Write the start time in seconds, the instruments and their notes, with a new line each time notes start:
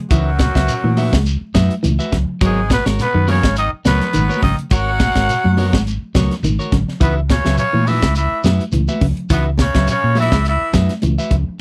0.11 fingered electric bass C#2, baritone saxophone F#2, clean electric guitar E3 D#4 F#4 B4 E5, tenor saxophone F#3, trumpet F#4, kick, closed hi-hat, shekere
0.39 kick, snare, closed hi-hat, high conga, shekere
0.55 fingered electric bass C#2, clean electric guitar F#3 F#4 B4 E5, kick, snare, closed hi-hat, shekere
0.68 closed hi-hat, shekere
0.84 fingered electric bass A#2, clean electric guitar E3, high conga
0.97 clean electric guitar D#4 F#4 B4 E5, open hi-hat, high conga, low conga, shekere
1.12 fingered electric bass C#2, clean electric guitar G#3, kick, snare, high conga, shekere
1.26 closed hi-hat, shekere
1.41 muted fingered electric bass stroke
1.54 fingered electric bass F#2, clean electric guitar F#3 D#4 F#4 B4 E5, kick, snare, closed hi-hat, high conga, shekere
1.70 closed hi-hat, shekere
1.83 fingered electric bass C#2, clean electric guitar E3, closed hi-hat, high conga, shekere
1.99 clean electric guitar F#4 B4 E5, shekere
2.12 fingered electric bass C#2, clean electric guitar C#3, kick, snare, closed hi-hat, low conga, shekere
2.29 muted fingered electric bass stroke
2.41 fingered electric bass G#1, baritone saxophone G#2, clean electric guitar F#3 B3 F#4 A#4 C#5, tenor saxophone G#3, kick, closed hi-hat, shekere
2.45 trumpet G#4
2.70 baritone saxophone B2, tenor saxophone B3, trumpet B4, kick, snare, closed hi-hat, high conga, shekere
2.86 fingered electric bass G#1, clean electric guitar G#3 F#4 A#4 C#5, snare, closed hi-hat, shekere
2.99 baritone saxophone B2, tenor saxophone B3, trumpet B4, snare, closed hi-hat, shekere
3.14 fingered electric bass F#2, clean electric guitar D#3
3.27 baritone saxophone C#3, clean electric guitar B3 F#4 A#4 C#5, tenor saxophone C#4, trumpet C#5, open hi-hat, high conga, low conga, shekere
3.43 fingered electric bass G#1, clean electric guitar G#3, kick, snare, closed hi-hat, shekere
3.56 baritone saxophone D#3, tenor saxophone D#4, trumpet D#5, closed hi-hat, shekere
3.73 muted fingered electric bass stroke
3.85 fingered electric bass C#2, baritone saxophone B2, clean electric guitar F#3 B3 F#4 A#4 C#5, tenor saxophone B3, trumpet B4, snare, closed hi-hat, high conga, shekere
4.01 snare, closed hi-hat, low conga, shekere
4.13 fingered electric bass G#1, clean electric guitar D#3, closed hi-hat, high conga, shekere
4.29 clean electric guitar F#4 A#4 C#5, high conga, shekere
4.42 fingered electric bass G#1, clean electric guitar C#3, baritone saxophone D#3, tenor saxophone D#4, trumpet D#5, kick, open hi-hat, low conga, shekere
4.59 muted fingered electric bass stroke, closed hi-hat
4.71 fingered electric bass G#1, baritone saxophone F#3, tenor saxophone F#4, clean electric guitar F#4 A#4 C#5, trumpet F#5, muted clean electric guitar stroke, kick, closed hi-hat, shekere
5.00 kick, snare, closed hi-hat, high conga, shekere
5.15 fingered electric bass G#1, clean electric guitar G#3 F#4 A#4 C#5, kick, snare, closed hi-hat, shekere
5.29 closed hi-hat, shekere
5.44 fingered electric bass F#2, clean electric guitar F#3, high conga
5.57 clean electric guitar B3 F#4 A#4 C#5, open hi-hat, high conga, low conga, shekere
5.73 fingered electric bass G#1, clean electric guitar G#3, kick, snare, high conga, shekere
5.87 closed hi-hat, shekere
6.02 muted fingered electric bass stroke
6.15 fingered electric bass C#2, clean electric guitar F#3 B3 F#4 A#4 C#5, kick, snare, closed hi-hat, high conga, shekere
6.31 snare, closed hi-hat, low conga, shekere
6.43 fingered electric bass G#1, clean electric guitar D#3, closed hi-hat, high conga, shekere
6.59 clean electric guitar F#4 A#4 C#5, shekere
6.72 fingered electric bass G#1, clean electric guitar C#3, kick, snare, closed hi-hat, low conga, shekere
6.88 muted fingered electric bass stroke, snare
7.00 fingered electric bass C#2, baritone saxophone B2, clean electric guitar E3 D#4 F#4 B4 E5, tenor saxophone B3, trumpet B4, kick, closed hi-hat, shekere
7.29 baritone saxophone C#3, tenor saxophone C#4, trumpet C#5, kick, snare, closed hi-hat, high conga, shekere
7.45 fingered electric bass C#2, clean electric guitar F#3 F#4 B4 E5, snare, closed hi-hat, shekere
7.57 baritone saxophone C#3, tenor saxophone C#4, trumpet C#5, closed hi-hat, shekere
7.73 fingered electric bass A#2, clean electric guitar E3, high conga
7.86 baritone saxophone E3, clean electric guitar D#4 F#4 B4 E5, tenor saxophone E4, trumpet E5, open hi-hat, high conga, low conga, shekere
8.02 fingered electric bass C#2, clean electric guitar G#3, kick, snare, closed hi-hat, high conga, shekere
8.15 baritone saxophone E3, tenor saxophone E4, trumpet E5, closed hi-hat, shekere
8.32 muted fingered electric bass stroke
8.44 fingered electric bass F#2, clean electric guitar F#3 D#4 F#4 B4 E5, snare, closed hi-hat, high conga, shekere
8.60 closed hi-hat, shekere
8.72 fingered electric bass C#2, clean electric guitar E3, closed hi-hat, high conga, shekere
8.88 clean electric guitar F#4 B4 E5, high conga, shekere
9.01 fingered electric bass C#2, clean electric guitar C#3, kick, open hi-hat, low conga, shekere
9.17 muted fingered electric bass stroke, closed hi-hat
9.30 fingered electric bass C#2, baritone saxophone B2, clean electric guitar E3 D#4 F#4 B4 E5, tenor saxophone B3, trumpet B4, kick, closed hi-hat, shekere
9.58 baritone saxophone C#3, trumpet C#5, kick, snare, closed hi-hat, high conga, shekere
9.64 tenor saxophone C#4
9.74 fingered electric bass C#2, clean electric guitar F#3 F#4 B4 E5, kick, snare, closed hi-hat, shekere
9.87 baritone saxophone C#3, trumpet C#5, snare, closed hi-hat, shekere
9.93 tenor saxophone C#4
10.04 fingered electric bass A#2
10.15 clean electric guitar D#4 F#4 B4 E5, open hi-hat, high conga, low conga, shekere
10.20 baritone saxophone E3, tenor saxophone E4, trumpet E5
10.32 fingered electric bass C#2, clean electric guitar G#3, kick, snare, shekere
10.45 baritone saxophone E3, tenor saxophone E4, trumpet E5, snare, closed hi-hat, shekere
10.73 fingered electric bass F#2, clean electric guitar F#3 D#4 F#4 B4 E5, kick, snare, closed hi-hat, high conga, shekere
10.89 snare, closed hi-hat, shekere
11.02 fingered electric bass C#2, clean electric guitar E3, closed hi-hat, high conga, shekere
11.18 clean electric guitar F#4 B4 E5, shekere
11.31 fingered electric bass C#2, kick, closed hi-hat, low conga, shekere
11.48 muted fingered electric bass stroke